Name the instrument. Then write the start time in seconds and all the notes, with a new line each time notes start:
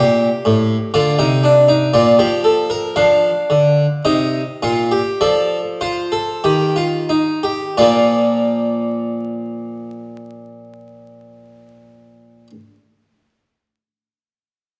harpsichord
Already playing: A#2 G4 F5
0.45 A2
0.94 D3 F4 D5
1.19 C3 D#4
1.44 D4
1.68 D#4
1.94 A#2 F4 D5
2.19 F3 G4
2.44 A4
2.70 A#4
2.96 F3 D4 F5
3.50 D3
4.05 C3 D#4 D#5
4.63 A#2 F4
4.91 G4
5.21 F3 A4 D5
5.81 F4 C5
6.12 A4
6.44 D#3 G4
6.76 F4
7.09 D#4
7.43 G4
7.77 A#2 F3 A#3 F4 D5